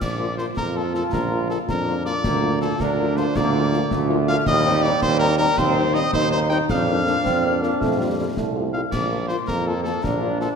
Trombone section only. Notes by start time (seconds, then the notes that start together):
0.56 F4
1.69 D4
2.23 A#3
2.80 D4
3.35 A#3
3.89 A3
4.46 G3
5.58 C4
6.14 D#4
6.70 D4
9.48 A#3
10.03 D4